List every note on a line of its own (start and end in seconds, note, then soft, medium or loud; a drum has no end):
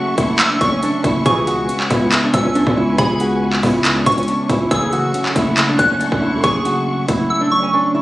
0.00 0.15 F#1 loud
0.00 0.39 C#3 medium
0.00 0.61 F#3 medium
0.00 0.18 A3 loud
0.00 0.83 C#4 loud
0.00 0.16 F#4 medium
0.00 1.22 A4 medium
0.00 4.67 E5 medium
0.00 1.22 F#5 medium
0.00 4.67 C#6 medium
0.18 0.59 F#1 loud
0.18 1.26 A3 loud
0.18 0.49 E4 medium
0.18 kick medium
0.18 closed hi-hat medium
0.39 1.02 C#3 medium
0.39 0.60 E6 medium
0.39 clap loud
0.39 closed hi-hat medium
0.50 0.69 D4 medium
0.61 0.82 F#1 loud
0.61 1.26 F#3 medium
0.61 1.22 C#6 medium
0.61 kick loud
0.61 closed hi-hat medium
0.72 0.81 C#4 medium
0.83 1.26 C#4 medium
0.83 1.01 D4 medium
0.83 closed hi-hat medium
1.04 1.25 F#1 loud
1.04 1.25 C#3 medium
1.04 1.22 E4 medium
1.04 kick loud
1.04 closed hi-hat medium
1.26 1.67 C#2 loud
1.26 1.67 B2 loud
1.26 1.67 C#3 loud
1.26 2.11 C#3 medium
1.26 1.67 E3 loud
1.26 1.44 G#4 loud
1.26 4.68 B4 medium
1.26 4.68 G#5 medium
1.26 1.66 C#6 loud
1.26 kick loud
1.26 closed hi-hat medium
1.47 2.32 G#3 medium
1.47 1.88 F#4 medium
1.47 closed hi-hat medium
1.69 2.54 C#4 medium
1.69 closed hi-hat medium
1.80 clap medium
1.90 2.11 C#2 loud
1.90 2.98 B3 medium
1.90 2.22 E4 medium
1.90 kick medium
1.90 closed hi-hat medium
2.12 2.75 C#3 medium
2.12 clap loud
2.12 closed hi-hat medium
2.24 2.42 D4 medium
2.34 2.65 C#2 loud
2.34 3.19 G#3 medium
2.34 2.54 E6 medium
2.34 kick medium
2.34 closed hi-hat medium
2.46 2.54 C#4 medium
2.55 3.40 C#4 loud
2.55 2.73 D4 medium
2.55 closed hi-hat medium
2.67 2.97 C#2 loud
2.67 kick loud
2.76 2.97 C#3 medium
2.76 2.95 E4 medium
2.98 3.61 C#2 loud
2.98 3.83 C#3 medium
2.98 3.17 G#4 loud
2.98 3.39 B5 loud
2.98 kick loud
2.98 closed hi-hat medium
3.20 4.06 G#3 medium
3.20 3.61 F#4 medium
3.20 closed hi-hat medium
3.42 4.26 C#4 medium
3.53 clap medium
3.63 4.05 C#2 loud
3.63 4.71 B3 loud
3.63 3.94 E4 medium
3.63 kick medium
3.63 open hi-hat medium
3.84 4.48 C#3 medium
3.84 clap loud
3.84 closed hi-hat medium
3.96 4.14 D4 medium
4.06 4.27 C#2 loud
4.06 4.71 G#3 medium
4.06 4.67 C#6 medium
4.06 kick loud
4.06 closed hi-hat medium
4.12 closed hi-hat medium
4.18 4.26 C#4 medium
4.18 closed hi-hat medium
4.23 closed hi-hat medium
4.27 4.71 C#4 loud
4.27 4.46 D4 medium
4.27 closed hi-hat medium
4.50 4.70 C#2 loud
4.50 4.70 C#3 medium
4.50 4.68 E4 medium
4.50 kick medium
4.50 closed hi-hat medium
4.71 5.13 F#1 loud
4.71 5.12 A2 medium
4.71 5.56 C#3 medium
4.71 5.12 C#3 loud
4.71 5.12 E3 loud
4.71 4.90 G#4 loud
4.71 8.02 A4 medium
4.71 8.02 E5 medium
4.71 8.02 F#5 medium
4.71 8.02 C#6 medium
4.71 5.12 E6 loud
4.71 kick loud
4.71 closed hi-hat medium
4.92 5.77 F#3 medium
4.92 5.33 F#4 medium
4.92 closed hi-hat medium
5.14 5.99 C#4 medium
5.14 closed hi-hat medium
5.26 clap medium
5.35 5.77 F#1 loud
5.35 6.43 A3 loud
5.35 5.67 E4 medium
5.35 kick medium
5.35 closed hi-hat medium
5.57 6.21 C#3 medium
5.57 clap loud
5.57 closed hi-hat medium
5.69 5.87 D4 medium
5.79 6.11 F#1 loud
5.79 6.64 F#3 medium
5.79 5.99 F#6 medium
5.79 kick loud
5.79 closed hi-hat medium
5.90 5.99 C#4 medium
6.00 6.85 C#4 loud
6.00 6.18 D4 medium
6.00 closed hi-hat medium
6.12 6.35 F#1 loud
6.12 kick loud
6.22 6.43 C#3 medium
6.22 6.40 E4 medium
6.33 6.43 F#2 loud
6.44 7.06 F#1 loud
6.44 7.29 C#3 medium
6.44 6.62 G#4 loud
6.44 6.84 C#6 loud
6.44 kick loud
6.44 closed hi-hat medium
6.65 7.51 F#3 medium
6.65 7.06 F#4 medium
6.65 closed hi-hat medium
6.87 7.72 C#4 medium
7.08 7.29 F#1 loud
7.08 8.02 A3 loud
7.08 7.40 E4 medium
7.08 kick medium
7.08 closed hi-hat medium
7.30 7.93 C#3 medium
7.30 7.51 E6 medium
7.41 7.59 D4 medium
7.52 8.02 F#3 medium
7.52 8.02 C#6 medium
7.63 7.71 C#4 medium
7.74 8.02 C#4 loud
7.74 7.92 D4 medium
7.94 8.02 C#3 medium
7.94 8.02 E4 medium